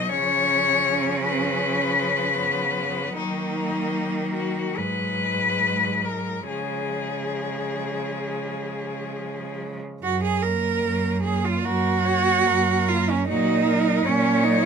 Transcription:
Already playing: B2 F#3 D#4
0.08 C#3 F3 C#4 C#5
1.25 B4
2.40 B3
3.17 D#3 F#3 A#3 D#4
4.33 F#4
4.77 G#2 F#3 G#3 B4
6.05 A#4
6.48 C#3 F3 G#3 G#4
10.03 F#2 F#4
10.24 G#4
10.43 A#3 A#4
10.84 F#2
11.23 A#3 G#4
11.45 F4
11.65 F#2 F#4 A#4
12.05 A#3 C#5
12.46 F#2 A#4
12.89 A#3 F4
13.10 C#4
13.28 A#2 F#3 D#4 F#4
13.67 F#3 A#4
14.05 A#2 C#4 C#5
14.44 F#3 D#4

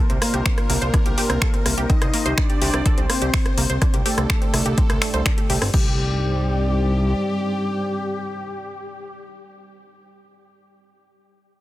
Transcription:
Already playing: A#3 D4 F4 A#4 C5
0.10 C2 C4 C5, closed hi-hat
0.22 A#3 A#4, cross-stick, open hi-hat
0.34 C2 G4 G5, closed hi-hat
0.46 C4 C5, finger snap, kick, closed hi-hat
0.58 C5 C6, cross-stick, closed hi-hat
0.70 C2 A#3 A#4, open hi-hat
0.82 C2 C5 C6, closed hi-hat
0.94 D4 D5, kick, cross-stick, closed hi-hat
1.06 C2 G4 G5, closed hi-hat
1.18 G4 G5, open hi-hat
1.30 C2 C4 C5, cross-stick, closed hi-hat
1.42 A4 A5, finger snap, kick, closed hi-hat
1.54 C4 C5, closed hi-hat
1.66 C2 A#3 A#4, cross-stick, open hi-hat
1.78 C2 G4 G5, closed hi-hat
1.90 C4 D#4 G4 C5 D#5, kick, closed hi-hat
2.02 C2 C5 C6, cross-stick, closed hi-hat
2.14 A#3 A#4, open hi-hat
2.26 C2 C5 C6, closed hi-hat
2.38 D4 D#4 D5 D#5, finger snap, kick, cross-stick, closed hi-hat
2.50 G4 G5, closed hi-hat
2.62 C2 G4 G5, open hi-hat
2.74 C2 C4 C5, cross-stick, closed hi-hat
2.86 A4 A5, kick, closed hi-hat
2.98 C2 C4 C5, closed hi-hat
3.10 A#3 C4 A#4 C5, cross-stick, open hi-hat
3.22 C2 G4 G5, closed hi-hat
3.34 C4 C5, finger snap, kick, open hi-hat
3.46 C5 C6, cross-stick, closed hi-hat
3.58 C2 A#3 A#4, open hi-hat
3.70 C2 C5 C6, closed hi-hat
3.82 A3 D4 G4 D5, kick, cross-stick, closed hi-hat
3.94 C2 G4 G5, closed hi-hat
4.06 A3 G4 A4 G5, open hi-hat
4.18 C2 C4 C5, cross-stick, closed hi-hat
4.30 A4 A5, finger snap, kick, closed hi-hat
4.42 C4 C5, closed hi-hat
4.54 C2 A3 A4, cross-stick, open hi-hat
4.66 C2 G4 G5, closed hi-hat
4.78 C4 C5, kick, closed hi-hat
4.90 C2 C5 C6, cross-stick, closed hi-hat
5.02 A3 A4, finger snap, open hi-hat
5.14 C2 C5 C6, closed hi-hat
5.26 D4, finger snap, kick, cross-stick, closed hi-hat
5.38 G4 G5, closed hi-hat
5.50 C2 G4 G5, open hi-hat
5.62 G1 C4 C5, cross-stick, open hi-hat
5.74 C2 G3 C4 D#4 G4 D5, kick, crash

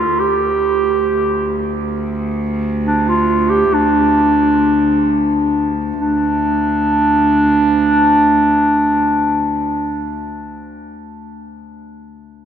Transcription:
Already playing: D2 F4
0.12 D2
0.20 G4
2.87 D4
3.09 F4
3.50 G4
3.74 D4
6.00 D2 D4

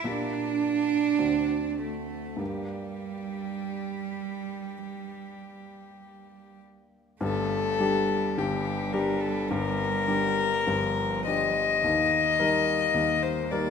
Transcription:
0.04 A#2 A#3 D4 G4 D5
1.19 D2 C4 D4 F#4
1.79 A3 A4
2.36 G2 G3 A#3 D4 G4
2.41 G4
7.21 G1 G2 A3 A4
7.79 G3 D4 G4
8.38 G1 G2 G4
8.93 G3 D4 G4 A#4
9.21 A4
9.49 G1 G2 A#4
10.07 G3 D4 G4
10.67 G1 G2 F3
11.26 G3 D4 G4 D#5
11.84 D#2 D#3
12.39 G3 D#4 A#4
12.94 D#2 D#3 A#3
13.23 C5
13.51 G3 D#4 A#4 D5

